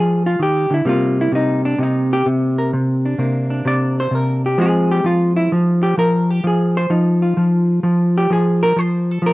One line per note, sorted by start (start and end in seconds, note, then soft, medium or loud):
0.00 0.38 F3 medium
0.00 0.83 G#3 soft
0.00 0.25 G#4 medium
0.26 0.40 F4 medium
0.39 0.70 D#3 medium
0.39 0.72 G4 medium
0.70 0.85 D3 medium
0.70 0.87 E4 medium
0.85 1.31 C3 medium
0.85 4.36 G3 soft
0.85 3.18 A#3 soft
0.85 1.19 F4 medium
1.21 1.34 E4 medium
1.32 1.78 C3 medium
1.32 1.65 D#4 medium
1.65 1.79 D4 medium
1.78 2.25 C3 medium
1.83 2.12 D#4 medium
2.13 2.26 G4 medium
2.26 2.72 C3 medium
2.58 2.70 A#4 soft
2.73 3.17 C3 medium
3.05 3.49 D4 soft
3.18 3.64 C3 medium
3.18 4.58 A#3 soft
3.50 4.58 D4 soft
3.65 4.10 C3 medium
3.65 3.97 D5 medium
4.00 4.15 C5 medium
4.11 4.56 C3 medium
4.11 4.44 A#4 medium
4.46 4.59 G4 medium
4.58 5.04 F3 medium
4.58 8.08 G#3 soft
4.58 5.53 C4 soft
4.58 4.91 G#4 medium
4.91 5.05 G4 medium
5.04 5.52 F3 medium
5.04 5.36 F4 medium
5.36 5.51 E4 medium
5.52 5.97 F3 medium
5.52 5.83 D#4 medium
5.83 5.97 G4 medium
5.97 6.43 F3 medium
5.97 6.30 A#4 medium
6.30 6.44 G4 medium
6.44 6.89 F3 medium
6.44 6.77 G#4 medium
6.77 6.91 C5 medium
6.90 7.37 F3 medium
6.90 8.33 D#4 soft
7.22 8.28 F4 soft
7.37 7.82 F3 medium
7.83 8.28 F3 medium
8.18 8.31 G4 medium
8.30 8.75 F3 medium
8.30 8.62 G#4 medium
8.63 8.79 A#4 loud
8.76 9.21 F3 medium
8.76 9.11 C5 loud
9.11 9.24 A4 medium
9.22 9.33 F3 medium
9.26 9.33 A#4 medium